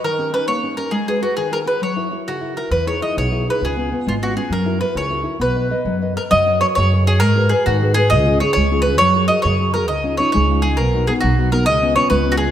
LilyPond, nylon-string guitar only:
\new Staff \with { instrumentName = "Nylon-string guitar" } { \time 6/8 \key b \major \tempo 4. = 134 dis8 <cis' dis' g'>8 <cis' dis' g'>8 ais8 <cis' dis' g'>8 <cis' dis' g'>8 | gis8 <fis' gis' b'>8 <fis' gis' b'>8 dis8 <fis' gis' b'>8 <fis' gis' b'>8 | fis8 <e' fis' ais'>8 <e' fis' ais'>8 cis8 <e' fis' ais'>8 <e' fis' ais'>8 | e8 <dis' e' gis'>8 <dis' e' gis'>8 b,8 <dis' e' gis'>8 <dis' e' gis'>8 |
cis8 <b cis' eis'>8 <b cis' eis'>8 gis8 <b cis' eis'>8 <b cis' eis'>8 | fis8 <e' fis' ais'>8 <e' fis' ais'>8 cis8 <e' fis' ais'>8 <e' fis' ais'>8 | b8 <ais' b' dis''>8 <ais' b' dis''>8 fis8 <ais' b' dis''>8 <ais' b' dis''>8 | \key fis \major fis8 <fis' ais' cis''>8 <fis' ais' cis''>8 cis8 <fis' ais' cis''>8 <fis' ais' cis''>8 |
gis8 <fis' gis' b'>8 <fis' gis' b'>8 dis8 <fis' gis' b'>8 <fis' gis' b'>8 | cis8 <cis' eis' gis'>8 <cis' eis' gis'>8 gis8 <cis' eis' gis'>8 <cis' gis'>8 | fis8 <fis' gis' ais'>8 <fis' gis' ais'>8 cis8 <fis' gis' ais'>8 <fis' gis' ais'>8 | cis8 <cis' dis' eis'>8 <cis' dis' eis'>8 gis8 <cis' dis' eis'>8 <cis' dis' eis'>8 |
b,8 <b dis' fis'>8 <b dis' fis'>8 fis8 <b dis' fis'>8 <b dis' fis'>8 | cis8 <b cis' eis'>8 <b cis' eis'>8 gis8 <b cis' eis'>8 <b cis' eis'>8 | }